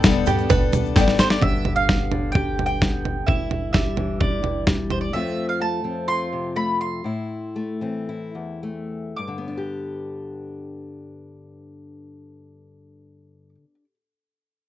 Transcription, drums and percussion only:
0.03 kick loud
0.03 snare loud
0.03 shaker medium
0.26 floor tom medium
0.26 shaker medium
0.38 shaker soft
0.50 kick loud
0.50 floor tom loud
0.50 shaker medium
0.73 floor tom medium
0.73 shaker medium
0.85 shaker soft
0.96 kick loud
0.96 snare medium
0.96 shaker medium
1.08 snare medium
1.19 snare medium
1.19 shaker medium
1.30 snare medium
1.30 shaker soft
1.42 kick medium
1.42 floor tom medium
1.65 floor tom medium
1.89 kick medium
1.89 snare loud
1.89 floor tom medium
2.12 floor tom medium
2.35 kick medium
2.35 floor tom medium
2.59 floor tom medium
2.82 kick loud
2.82 snare loud
2.82 floor tom medium
3.05 floor tom medium
3.28 kick medium
3.28 floor tom medium
3.51 floor tom medium
3.74 kick medium
3.74 snare medium
3.74 floor tom medium
3.97 floor tom medium
4.21 kick medium
4.21 floor tom medium
4.44 floor tom medium
4.67 kick medium
4.67 snare medium
4.67 floor tom medium
4.90 floor tom medium

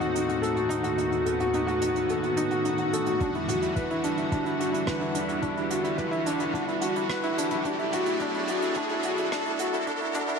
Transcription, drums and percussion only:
0.01 closed hi-hat soft
0.16 closed hi-hat medium
0.29 closed hi-hat soft
0.43 closed hi-hat medium
0.57 closed hi-hat soft
0.70 closed hi-hat medium
0.84 closed hi-hat soft
0.98 closed hi-hat medium
1.12 closed hi-hat soft
1.26 closed hi-hat medium
1.40 closed hi-hat soft
1.54 closed hi-hat medium
1.68 closed hi-hat soft
1.82 closed hi-hat medium
1.96 closed hi-hat soft
2.09 closed hi-hat medium
2.23 closed hi-hat soft
2.37 closed hi-hat medium
2.51 closed hi-hat soft
2.65 closed hi-hat medium
2.78 closed hi-hat soft
2.93 closed hi-hat medium
3.06 closed hi-hat soft
3.20 kick medium
3.20 closed hi-hat medium
3.35 closed hi-hat soft
3.48 closed hi-hat medium
3.48 mid tom medium
3.62 closed hi-hat soft
3.76 kick medium
3.76 closed hi-hat medium
3.90 closed hi-hat soft
4.04 closed hi-hat medium
4.17 closed hi-hat soft
4.32 kick loud
4.32 closed hi-hat medium
4.46 closed hi-hat soft
4.61 closed hi-hat medium
4.74 closed hi-hat soft
4.87 kick loud
4.87 cross-stick medium
4.87 closed hi-hat medium
5.01 closed hi-hat soft
5.15 closed hi-hat medium
5.29 closed hi-hat medium
5.42 kick medium
5.42 closed hi-hat medium
5.57 closed hi-hat soft
5.70 closed hi-hat medium
5.84 closed hi-hat soft
5.98 kick medium
5.98 closed hi-hat medium
5.98 mid tom medium
6.12 closed hi-hat soft
6.26 closed hi-hat medium
6.40 closed hi-hat soft
6.54 kick loud
6.54 closed hi-hat medium
6.68 closed hi-hat soft
6.81 closed hi-hat medium
6.96 closed hi-hat soft
7.09 kick loud
7.09 cross-stick medium
7.09 closed hi-hat medium
7.23 closed hi-hat soft
7.38 closed hi-hat medium
7.51 closed hi-hat soft
7.51 mid tom medium
7.65 kick medium
7.65 closed hi-hat medium
7.79 closed hi-hat soft
7.93 closed hi-hat medium
7.93 mid tom medium
8.06 closed hi-hat soft
8.20 kick medium
8.20 closed hi-hat medium
8.34 closed hi-hat soft
8.48 closed hi-hat medium
8.62 closed hi-hat soft
8.75 kick loud
8.75 closed hi-hat medium
8.89 closed hi-hat soft
9.03 closed hi-hat medium
9.18 closed hi-hat soft
9.32 kick loud
9.32 cross-stick medium
9.32 closed hi-hat medium
9.45 closed hi-hat soft
9.59 closed hi-hat medium
9.74 closed hi-hat soft
9.87 kick medium
9.87 closed hi-hat medium
10.01 closed hi-hat soft
10.14 closed hi-hat medium
10.14 mid tom medium
10.29 closed hi-hat soft

